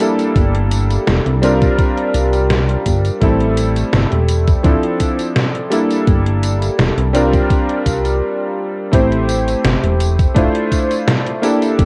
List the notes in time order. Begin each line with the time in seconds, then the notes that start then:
0.00 G3 A#3 D4 E4 A4, closed hi-hat, tambourine
0.19 closed hi-hat, tambourine
0.36 G1, kick, closed hi-hat, tambourine
0.55 closed hi-hat
0.71 closed hi-hat, tambourine
0.91 closed hi-hat, tambourine
1.07 E1, snare, closed hi-hat, tambourine
1.26 C2, closed hi-hat
1.42 G3 C4 D4 F4 A#4, closed hi-hat, tambourine
1.62 kick, closed hi-hat, tambourine
1.79 kick, closed hi-hat, tambourine
1.98 closed hi-hat
2.14 C2, closed hi-hat, tambourine
2.33 closed hi-hat, tambourine
2.50 snare, closed hi-hat, tambourine
2.69 closed hi-hat
2.86 G1, kick, closed hi-hat, tambourine
3.05 closed hi-hat, tambourine
3.20 A1 G3 A3 C4 E4 A4, kick, closed hi-hat, tambourine
3.40 closed hi-hat
3.57 closed hi-hat, tambourine
3.76 closed hi-hat, tambourine
3.93 G1, snare, closed hi-hat, tambourine
4.12 E1, closed hi-hat
4.28 closed hi-hat, tambourine
4.47 kick, closed hi-hat, tambourine
4.63 D1 F3 C4 D4 E4 A4, kick, closed hi-hat, tambourine
4.83 closed hi-hat
5.00 kick, closed hi-hat, tambourine
5.19 closed hi-hat, tambourine
5.36 snare, closed hi-hat, tambourine
5.55 closed hi-hat
5.70 G3 A#3 D4 E4 A4, closed hi-hat, tambourine
5.91 closed hi-hat, tambourine
6.07 G1, kick, closed hi-hat, tambourine
6.26 closed hi-hat
6.43 closed hi-hat, tambourine
6.62 closed hi-hat, tambourine
6.79 E1, snare, closed hi-hat, tambourine
6.98 C2, closed hi-hat
7.13 G3 C4 D4 F4 A#4, closed hi-hat, tambourine
7.33 kick, closed hi-hat, tambourine
7.50 kick, closed hi-hat, tambourine
7.69 closed hi-hat
7.86 C2, kick, closed hi-hat, tambourine
8.05 closed hi-hat, tambourine
8.92 A1 A3 C4 E4 G4 C5, kick, closed hi-hat, tambourine
9.12 closed hi-hat
9.29 closed hi-hat, tambourine
9.48 closed hi-hat, tambourine
9.65 G1, snare, closed hi-hat, tambourine
9.84 E1, closed hi-hat
10.00 closed hi-hat, tambourine
10.19 kick, closed hi-hat, tambourine
10.34 D1 A3 D4 E4 F4 C5, kick, closed hi-hat, tambourine
10.55 closed hi-hat
10.72 kick, closed hi-hat, tambourine
10.91 closed hi-hat, tambourine
11.08 snare, closed hi-hat, tambourine
11.27 closed hi-hat
11.42 A#3 D4 E4 G4 A4, closed hi-hat, tambourine
11.62 closed hi-hat, tambourine
11.79 G1, kick, closed hi-hat, tambourine